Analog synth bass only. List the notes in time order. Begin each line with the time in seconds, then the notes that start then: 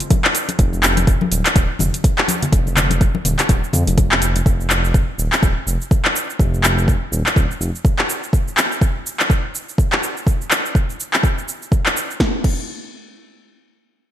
0.59 F1
1.32 D#1
1.56 D#1
1.80 F1
2.52 F1
3.25 D#1
3.49 D#1
3.73 F2
3.87 F1
4.46 F1
5.18 D#1
5.43 D#1
5.67 F1
6.39 F1
7.12 D#1
7.36 D#1
7.60 F1